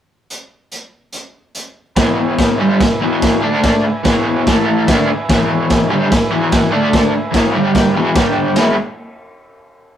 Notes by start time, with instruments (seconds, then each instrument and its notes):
0.30 closed hi-hat
0.72 closed hi-hat
1.13 closed hi-hat
1.55 closed hi-hat
1.96 overdriven electric guitar E2 B2 E3, transistor combo organ B4 E5 G#5, kick, snare, crash
2.39 kick, snare, crash
2.58 overdriven electric guitar G2 D3 G3
2.80 overdriven electric guitar E2 B2, kick, snare, crash
3.00 overdriven electric guitar E2 B2 E3
3.22 kick, snare, crash
3.41 overdriven electric guitar D3 A3 D4, transistor combo organ A4 D5 A5
3.63 kick, snare, crash
3.83 transistor combo organ B4 E5 G#5, muted overdriven electric guitar stroke
4.04 overdriven electric guitar E2 B2 E3, kick, snare, crash
4.47 overdriven electric guitar A2 E3 A3, transistor combo organ A4 E5 A5, kick, snare, crash
4.87 overdriven electric guitar D3 A3 D4, transistor combo organ B4 E5 G#5, kick, snare, crash
5.09 muted overdriven electric guitar stroke
5.29 overdriven electric guitar E2 B2 E3, kick, snare, crash
5.70 kick, snare, crash
5.90 overdriven electric guitar G2 D3 G3
6.11 overdriven electric guitar E2 B2, kick, snare, crash
6.30 overdriven electric guitar E2 B2 E3
6.52 kick, snare, crash
6.72 overdriven electric guitar D3 A3 D4, transistor combo organ A4 D5 A5
6.93 kick, snare, crash
7.12 transistor combo organ B4 E5 G#5, muted overdriven electric guitar stroke
7.32 overdriven electric guitar E2 B2 E3, kick, snare, crash
7.54 overdriven electric guitar G2 D3 G3, transistor combo organ G4 D5 G5
7.75 kick, snare, crash
7.96 overdriven electric guitar E2 B2 E3
8.15 overdriven electric guitar G2 D3 G3, transistor combo organ G4 D5 G5, kick, snare, crash
8.53 transistor combo organ G#4 B4 E5, snare, ride bell
8.57 overdriven electric guitar E2 B2 E3 G#3 B3 E4